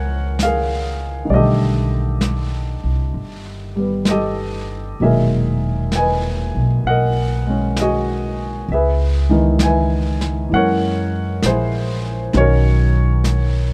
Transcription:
Already playing: upright bass C#2, grand piano F3 G#3 A#3 C#4 A#4 C#5 F5 F#5 G#5
0.39 grand piano F5, brush sweep, snare, hi-hat pedal
0.45 grand piano G#4 A#4
1.25 grand piano D#3 G3
1.29 upright bass B1, grand piano A3 D5, brush sweep
1.34 grand piano D3 G4 A4 D#5
2.21 brush sweep, snare, hi-hat pedal
2.84 upright bass C2
3.13 upright bass G1, brush sweep
3.76 grand piano G3 B3
4.05 grand piano D#5, brush sweep, snare, hi-hat pedal
4.11 grand piano G4 A4
4.99 upright bass E1, grand piano A#2 D#3 F#3 G#3 G#4 E5, brush sweep
5.04 grand piano A#4
5.92 grand piano G#5, brush sweep, snare, hi-hat pedal
5.97 grand piano B4 D#5
6.55 upright bass B1
6.84 upright bass B1, grand piano F#5, brush sweep
6.89 grand piano A#4 D#5
7.47 grand piano G#3 C#4
7.76 grand piano D#5, brush sweep, snare, hi-hat pedal
7.81 grand piano F#4 G#4
8.68 upright bass C#2, grand piano E5, brush sweep
8.74 grand piano G#4 B4
9.29 grand piano D#3 E3 G#3 B3
9.59 grand piano G#5, brush sweep, snare, hi-hat pedal
9.65 grand piano B4 E5
10.21 snare
10.49 upright bass F#2, grand piano E3 G#3 A#3, brush sweep
10.54 grand piano C#4 A#4 C#5 F#5
11.42 upright bass A#1, grand piano C5, brush sweep, snare, hi-hat pedal
11.47 grand piano E4 G#4
12.33 upright bass B1, grand piano D#3 F#3 C#4 C#5, brush sweep, snare
12.39 grand piano F#4 A#4
13.24 brush sweep, snare, hi-hat pedal

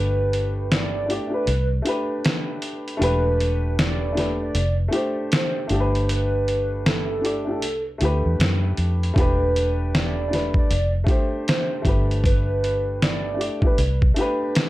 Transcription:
Already playing: fingered electric bass G1, upright piano A3 D4 G4 B4, soft synth lead B4
0.33 closed hi-hat
0.72 soft synth lead D5, snare, closed hi-hat
1.06 upright piano A3 D4, closed hi-hat
1.10 upright piano G4 D5
1.27 upright piano A3 D4
1.32 upright piano G4 B4, soft synth lead B4
1.47 fingered electric bass C2, closed hi-hat
1.82 upright piano A3 D4, closed hi-hat
1.86 upright piano G4 B4
2.25 snare, closed hi-hat
2.62 closed hi-hat
2.88 closed hi-hat
2.97 upright piano A3 D4
3.01 fingered electric bass E1, upright piano G4 B4, soft synth lead B4, closed hi-hat
3.40 closed hi-hat
3.79 soft synth lead D5, snare, closed hi-hat
4.12 upright piano A3 D4
4.17 upright piano G4 B4, snare, closed hi-hat
4.43 soft synth lead D5
4.55 fingered electric bass F1, closed hi-hat
4.88 upright piano A3 D4
4.92 upright piano G4 C5, closed hi-hat
5.32 soft synth lead C5, snare, closed hi-hat
5.67 fingered electric bass G1, upright piano A3 D4, closed hi-hat
5.72 upright piano G4 A4
5.80 upright piano B4
5.95 closed hi-hat
6.09 soft synth lead B4, closed hi-hat
6.48 closed hi-hat
6.86 soft synth lead A4, snare, closed hi-hat
7.19 upright piano A3 D4
7.24 upright piano G4 D5, closed hi-hat
7.44 upright piano A3 D4
7.49 upright piano G4 A4, soft synth lead A4
7.62 fingered electric bass C2, closed hi-hat
7.98 fingered electric bass D2, upright piano A3 D4, closed hi-hat
8.02 upright piano G4 B4
8.26 fingered electric bass E2
8.39 fingered electric bass F#2, snare, closed hi-hat
8.77 fingered electric bass F2, closed hi-hat
9.03 closed hi-hat
9.14 fingered electric bass E1, upright piano A3 D4, kick
9.18 upright piano G4 B4, soft synth lead B4, closed hi-hat
9.56 closed hi-hat
9.95 soft synth lead D5, snare, closed hi-hat
10.28 upright piano A3 D4
10.32 upright piano G4 B4, snare, closed hi-hat
10.54 kick
10.58 soft synth lead D5
10.70 fingered electric bass F1, closed hi-hat
11.04 upright piano A3 D4, kick
11.08 upright piano G4 C5, closed hi-hat
11.48 soft synth lead C5, snare, closed hi-hat
11.82 fingered electric bass G1, upright piano A3 D4, kick, closed hi-hat
11.87 upright piano G4 B4
12.11 closed hi-hat
12.24 soft synth lead B4, kick, closed hi-hat
12.64 closed hi-hat
13.02 soft synth lead D5, snare, closed hi-hat
13.34 upright piano A3 D4
13.39 upright piano G4 D5, closed hi-hat
13.60 upright piano A3 D4, kick
13.64 upright piano G4 B4, soft synth lead B4
13.78 fingered electric bass C2, closed hi-hat
14.02 kick
14.14 upright piano A3 D4, closed hi-hat
14.18 upright piano G4 B4
14.55 snare, closed hi-hat

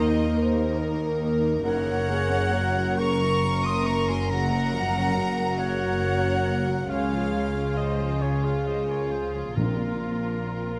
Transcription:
Already playing: double bass section D#2, cello section D#2, harp D#3 A#3 D#4 A#4 D#5, viola section A#3 D#4, french horn section A#4, violin section A#4 D#5, flute section C5, oboe D#5
0.16 harp A#4
0.37 french horn section C5, harp D#5
0.57 harp A#4
0.79 french horn section A#4, harp D#5
1.00 harp A#4
1.21 harp D#4, french horn section A#4
1.42 harp A#3
1.64 double bass section F#1, harp F#2, cello section F#2, viola section C#3 A#3, violin section A#4 F#5, french horn section A#4, flute section C#5, oboe F#5
1.86 harp C#3, viola section F#3
2.07 harp A#3, viola section A#3, french horn section G#4
2.31 viola section C#4, harp A#4
2.54 viola section A#3, french horn section F#4
2.77 viola section F#3, harp A#4
2.99 viola section C#3, french horn section A#4, flute section A#5, oboe C#6, violin section C#6
3.21 viola section F#3, harp A#4
3.44 viola section A#3
3.64 viola section C#4, harp A#4, flute section C6, violin section D#6, oboe D#6
3.86 harp C#3, viola section A#3, flute section A#5, violin section C#6, oboe C#6
4.08 viola section F#3, harp A#3, flute section G#5, oboe C6, violin section C6
4.30 harp F#2, viola section C#3, french horn section F#4, flute section F#5, violin section A#5, oboe A#5
4.51 harp C#3, viola section F#3
4.72 french horn section F3, harp A#3, viola section A#3
4.93 viola section C#4, harp A#4
5.17 viola section A#3, french horn section F#4
5.38 viola section F#3, harp A#4
5.58 viola section C#3, flute section C#5, oboe F#5, violin section F#5
5.81 viola section F#3
6.04 viola section A#3
6.24 viola section C#4, harp A#4
6.46 harp C#3, viola section A#3
6.69 viola section F#3, harp A#3
6.89 double bass section C#2, harp C#3, cello section C#3, viola section C#3 G#3, violin section F4 F5, french horn section G#4, flute section C#5, oboe F5
7.12 viola section F3, harp G#3
7.36 viola section G#3
7.56 viola section C#4, harp G#4
7.78 viola section G#3, flute section C5, oboe D#5, violin section D#5, harp F5
7.99 viola section F3, harp G#4
8.22 viola section C#3, flute section G#4, violin section C#5, oboe C#5, harp C#5
8.44 viola section F3, flute section C#5, oboe F5, violin section F5
8.66 viola section G#3, flute section C5, harp C#5, violin section D#5, oboe D#5
8.88 viola section C#4, harp G#4, flute section A#4, violin section C#5, oboe C#5
9.11 harp G#3, viola section G#3, flute section G#4, oboe C5, violin section C5
9.33 viola section F3, harp C#4, flute section F4, violin section G#4, oboe G#4
9.55 double bass section A#1, harp A#2, cello section A#2, timpani A#2, viola section F3 C4, flute section F4, oboe A#4, french horn section A#4, violin section A#4
9.79 harp F3, viola section A#3
10.02 harp C4, viola section C4
10.25 viola section D4, harp A#4
10.47 viola section C4, harp D5
10.69 viola section A#3, harp C5

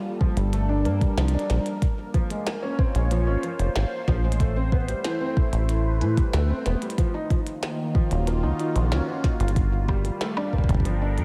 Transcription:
Already playing: analog synth pad G3 A#3 D4 F4 A4
0.21 felt piano F3, kick
0.26 analog synth pad A#4
0.37 acid bass G1, felt piano G3, closed hi-hat
0.53 felt piano A3, closed hi-hat
0.69 felt piano D4
0.85 acid bass G2, felt piano A#3, closed hi-hat
1.01 felt piano G3, kick, closed hi-hat
1.17 acid bass C2, felt piano F3, snare, closed hi-hat
1.28 closed hi-hat
1.34 felt piano D4
1.39 closed hi-hat
1.50 acid bass A#1, felt piano F3, analog synth pad A#3, snare, closed hi-hat
1.66 closed hi-hat
1.82 kick, closed hi-hat
2.14 felt piano F3, kick, closed hi-hat
2.30 felt piano G#3, closed hi-hat
2.35 analog synth pad C#5
2.41 analog synth pad F4
2.46 felt piano A#3, snare, closed hi-hat
2.63 felt piano C#4
2.69 analog synth pad C5
2.79 felt piano C4, kick
2.95 acid bass A#1, felt piano G#3, closed hi-hat
3.11 felt piano F3, closed hi-hat
3.27 acid bass G#1, felt piano C#4
3.43 felt piano F3, closed hi-hat
3.59 acid bass F1, closed hi-hat
3.76 acid bass G#1, snare, closed hi-hat
4.08 acid bass A#1, felt piano F3, kick, snare
4.24 acid bass A1, felt piano G#3
4.32 closed hi-hat
4.40 felt piano A3, analog synth pad A3, kick, closed hi-hat
4.56 felt piano C4
4.66 analog synth pad E4
4.72 felt piano B3, kick
4.88 felt piano G3, closed hi-hat
5.04 felt piano E3, snare, closed hi-hat
5.21 felt piano C4
5.37 felt piano E3, kick
5.53 acid bass A1, analog synth pad B4, closed hi-hat
5.69 closed hi-hat
6.01 acid bass A2, felt piano E3, closed hi-hat
6.17 felt piano G3, kick, closed hi-hat
6.33 acid bass D2, felt piano A3, snare, closed hi-hat
6.50 felt piano C4
6.66 acid bass E1, felt piano B3, snare, closed hi-hat
6.82 felt piano G3, closed hi-hat
6.90 closed hi-hat
6.98 analog synth pad D#3, felt piano F3, kick, closed hi-hat
7.14 analog synth pad A#3, felt piano D#4
7.27 felt piano F3, analog synth pad F4, kick, closed hi-hat
7.47 closed hi-hat
7.63 snare, closed hi-hat
7.95 felt piano F3, kick
8.11 acid bass D#1, felt piano F#3, analog synth pad F#4, closed hi-hat
8.27 felt piano A#3, closed hi-hat
8.43 acid bass C#2, felt piano D#4
8.59 felt piano D#4, closed hi-hat
8.75 acid bass A#1, felt piano F3, closed hi-hat
8.92 acid bass C#2, felt piano C#4, snare, closed hi-hat
9.08 felt piano C#4
9.24 felt piano D#4, kick, snare, closed hi-hat
9.40 acid bass G1, felt piano F4, closed hi-hat
9.48 closed hi-hat
9.56 analog synth pad G3, kick, closed hi-hat
9.88 felt piano G3, kick, percussion blips
10.05 felt piano G3, closed hi-hat
10.21 felt piano A3, snare, closed hi-hat
10.37 felt piano D4, percussion blips
10.43 analog synth pad D4
10.53 felt piano A#3, kick
10.58 analog synth pad A4 A#4, kick
10.64 kick
10.69 acid bass G1, felt piano G3, kick, closed hi-hat
10.74 kick
10.80 kick
10.85 felt piano F3, closed hi-hat
11.01 felt piano D4
11.18 acid bass G2, felt piano F3, closed hi-hat

